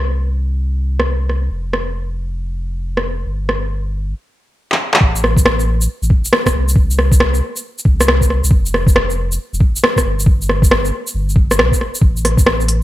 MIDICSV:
0, 0, Header, 1, 3, 480
1, 0, Start_track
1, 0, Key_signature, 0, "minor"
1, 0, Tempo, 437956
1, 1656, Time_signature, 4, 2, 24, 8
1, 14064, End_track
2, 0, Start_track
2, 0, Title_t, "Sub bass"
2, 0, Program_c, 0, 38
2, 0, Note_on_c, 0, 36, 79
2, 1635, Note_off_c, 0, 36, 0
2, 1650, Note_on_c, 0, 29, 81
2, 3556, Note_off_c, 0, 29, 0
2, 3575, Note_on_c, 0, 31, 83
2, 4535, Note_off_c, 0, 31, 0
2, 5490, Note_on_c, 0, 33, 100
2, 6442, Note_off_c, 0, 33, 0
2, 6599, Note_on_c, 0, 33, 108
2, 6684, Note_off_c, 0, 33, 0
2, 7174, Note_on_c, 0, 36, 91
2, 8124, Note_off_c, 0, 36, 0
2, 8608, Note_on_c, 0, 36, 100
2, 9226, Note_off_c, 0, 36, 0
2, 9249, Note_on_c, 0, 36, 94
2, 9320, Note_off_c, 0, 36, 0
2, 9326, Note_on_c, 0, 29, 101
2, 10280, Note_off_c, 0, 29, 0
2, 10446, Note_on_c, 0, 29, 101
2, 10527, Note_off_c, 0, 29, 0
2, 11012, Note_on_c, 0, 31, 86
2, 11963, Note_off_c, 0, 31, 0
2, 12214, Note_on_c, 0, 31, 81
2, 12693, Note_on_c, 0, 35, 97
2, 12709, Note_off_c, 0, 31, 0
2, 12835, Note_off_c, 0, 35, 0
2, 13169, Note_on_c, 0, 33, 95
2, 14064, Note_off_c, 0, 33, 0
2, 14064, End_track
3, 0, Start_track
3, 0, Title_t, "Drums"
3, 1091, Note_on_c, 9, 37, 62
3, 1201, Note_off_c, 9, 37, 0
3, 1419, Note_on_c, 9, 37, 31
3, 1529, Note_off_c, 9, 37, 0
3, 1900, Note_on_c, 9, 37, 54
3, 2010, Note_off_c, 9, 37, 0
3, 3258, Note_on_c, 9, 37, 54
3, 3367, Note_off_c, 9, 37, 0
3, 3824, Note_on_c, 9, 37, 58
3, 3933, Note_off_c, 9, 37, 0
3, 5172, Note_on_c, 9, 39, 66
3, 5282, Note_off_c, 9, 39, 0
3, 5412, Note_on_c, 9, 39, 91
3, 5488, Note_on_c, 9, 36, 123
3, 5522, Note_off_c, 9, 39, 0
3, 5597, Note_off_c, 9, 36, 0
3, 5653, Note_on_c, 9, 82, 50
3, 5742, Note_on_c, 9, 37, 63
3, 5763, Note_off_c, 9, 82, 0
3, 5852, Note_off_c, 9, 37, 0
3, 5880, Note_on_c, 9, 36, 103
3, 5894, Note_on_c, 9, 82, 57
3, 5979, Note_on_c, 9, 37, 107
3, 5990, Note_off_c, 9, 36, 0
3, 6004, Note_off_c, 9, 82, 0
3, 6089, Note_off_c, 9, 37, 0
3, 6135, Note_on_c, 9, 82, 33
3, 6244, Note_off_c, 9, 82, 0
3, 6371, Note_on_c, 9, 82, 57
3, 6480, Note_off_c, 9, 82, 0
3, 6609, Note_on_c, 9, 82, 32
3, 6687, Note_on_c, 9, 36, 108
3, 6718, Note_off_c, 9, 82, 0
3, 6797, Note_off_c, 9, 36, 0
3, 6849, Note_on_c, 9, 82, 58
3, 6934, Note_on_c, 9, 37, 107
3, 6959, Note_off_c, 9, 82, 0
3, 7043, Note_off_c, 9, 37, 0
3, 7080, Note_on_c, 9, 36, 61
3, 7086, Note_on_c, 9, 37, 64
3, 7086, Note_on_c, 9, 82, 47
3, 7190, Note_off_c, 9, 36, 0
3, 7196, Note_off_c, 9, 37, 0
3, 7196, Note_off_c, 9, 82, 0
3, 7329, Note_on_c, 9, 82, 60
3, 7405, Note_on_c, 9, 36, 122
3, 7438, Note_off_c, 9, 82, 0
3, 7515, Note_off_c, 9, 36, 0
3, 7570, Note_on_c, 9, 82, 47
3, 7657, Note_on_c, 9, 37, 60
3, 7679, Note_off_c, 9, 82, 0
3, 7766, Note_off_c, 9, 37, 0
3, 7799, Note_on_c, 9, 36, 111
3, 7809, Note_on_c, 9, 82, 60
3, 7894, Note_on_c, 9, 37, 111
3, 7909, Note_off_c, 9, 36, 0
3, 7918, Note_off_c, 9, 82, 0
3, 8003, Note_off_c, 9, 37, 0
3, 8049, Note_on_c, 9, 82, 31
3, 8159, Note_off_c, 9, 82, 0
3, 8289, Note_on_c, 9, 82, 57
3, 8399, Note_off_c, 9, 82, 0
3, 8532, Note_on_c, 9, 82, 34
3, 8606, Note_on_c, 9, 36, 116
3, 8642, Note_off_c, 9, 82, 0
3, 8715, Note_off_c, 9, 36, 0
3, 8774, Note_on_c, 9, 37, 67
3, 8774, Note_on_c, 9, 82, 59
3, 8859, Note_off_c, 9, 37, 0
3, 8859, Note_on_c, 9, 37, 110
3, 8884, Note_off_c, 9, 82, 0
3, 8968, Note_off_c, 9, 37, 0
3, 8998, Note_on_c, 9, 36, 61
3, 9013, Note_on_c, 9, 82, 47
3, 9100, Note_on_c, 9, 37, 36
3, 9107, Note_off_c, 9, 36, 0
3, 9123, Note_off_c, 9, 82, 0
3, 9209, Note_off_c, 9, 37, 0
3, 9253, Note_on_c, 9, 82, 61
3, 9324, Note_on_c, 9, 36, 127
3, 9362, Note_off_c, 9, 82, 0
3, 9434, Note_off_c, 9, 36, 0
3, 9489, Note_on_c, 9, 82, 46
3, 9581, Note_on_c, 9, 37, 61
3, 9599, Note_off_c, 9, 82, 0
3, 9691, Note_off_c, 9, 37, 0
3, 9717, Note_on_c, 9, 36, 118
3, 9734, Note_on_c, 9, 82, 57
3, 9818, Note_on_c, 9, 37, 107
3, 9827, Note_off_c, 9, 36, 0
3, 9844, Note_off_c, 9, 82, 0
3, 9927, Note_off_c, 9, 37, 0
3, 9976, Note_on_c, 9, 82, 33
3, 10086, Note_off_c, 9, 82, 0
3, 10214, Note_on_c, 9, 82, 53
3, 10324, Note_off_c, 9, 82, 0
3, 10456, Note_on_c, 9, 82, 34
3, 10527, Note_on_c, 9, 36, 113
3, 10566, Note_off_c, 9, 82, 0
3, 10636, Note_off_c, 9, 36, 0
3, 10697, Note_on_c, 9, 82, 61
3, 10780, Note_on_c, 9, 37, 111
3, 10806, Note_off_c, 9, 82, 0
3, 10889, Note_off_c, 9, 37, 0
3, 10921, Note_on_c, 9, 36, 64
3, 10936, Note_on_c, 9, 37, 58
3, 10936, Note_on_c, 9, 82, 46
3, 11030, Note_off_c, 9, 36, 0
3, 11046, Note_off_c, 9, 37, 0
3, 11046, Note_off_c, 9, 82, 0
3, 11175, Note_on_c, 9, 82, 57
3, 11249, Note_on_c, 9, 36, 127
3, 11285, Note_off_c, 9, 82, 0
3, 11358, Note_off_c, 9, 36, 0
3, 11416, Note_on_c, 9, 82, 44
3, 11502, Note_on_c, 9, 37, 60
3, 11526, Note_off_c, 9, 82, 0
3, 11611, Note_off_c, 9, 37, 0
3, 11641, Note_on_c, 9, 36, 111
3, 11660, Note_on_c, 9, 82, 56
3, 11742, Note_on_c, 9, 37, 110
3, 11751, Note_off_c, 9, 36, 0
3, 11770, Note_off_c, 9, 82, 0
3, 11852, Note_off_c, 9, 37, 0
3, 11894, Note_on_c, 9, 82, 31
3, 12003, Note_off_c, 9, 82, 0
3, 12133, Note_on_c, 9, 82, 53
3, 12243, Note_off_c, 9, 82, 0
3, 12379, Note_on_c, 9, 82, 30
3, 12448, Note_on_c, 9, 36, 110
3, 12488, Note_off_c, 9, 82, 0
3, 12558, Note_off_c, 9, 36, 0
3, 12617, Note_on_c, 9, 37, 63
3, 12617, Note_on_c, 9, 82, 56
3, 12703, Note_off_c, 9, 37, 0
3, 12703, Note_on_c, 9, 37, 106
3, 12726, Note_off_c, 9, 82, 0
3, 12813, Note_off_c, 9, 37, 0
3, 12842, Note_on_c, 9, 36, 65
3, 12861, Note_on_c, 9, 82, 44
3, 12946, Note_on_c, 9, 37, 35
3, 12952, Note_off_c, 9, 36, 0
3, 12970, Note_off_c, 9, 82, 0
3, 13055, Note_off_c, 9, 37, 0
3, 13095, Note_on_c, 9, 82, 59
3, 13168, Note_on_c, 9, 36, 122
3, 13205, Note_off_c, 9, 82, 0
3, 13278, Note_off_c, 9, 36, 0
3, 13336, Note_on_c, 9, 82, 45
3, 13425, Note_on_c, 9, 37, 57
3, 13425, Note_on_c, 9, 46, 73
3, 13446, Note_off_c, 9, 82, 0
3, 13534, Note_off_c, 9, 37, 0
3, 13534, Note_off_c, 9, 46, 0
3, 13562, Note_on_c, 9, 36, 107
3, 13574, Note_on_c, 9, 82, 56
3, 13661, Note_on_c, 9, 37, 102
3, 13672, Note_off_c, 9, 36, 0
3, 13683, Note_off_c, 9, 82, 0
3, 13771, Note_off_c, 9, 37, 0
3, 13816, Note_on_c, 9, 82, 30
3, 13902, Note_on_c, 9, 46, 73
3, 13926, Note_off_c, 9, 82, 0
3, 14012, Note_off_c, 9, 46, 0
3, 14064, End_track
0, 0, End_of_file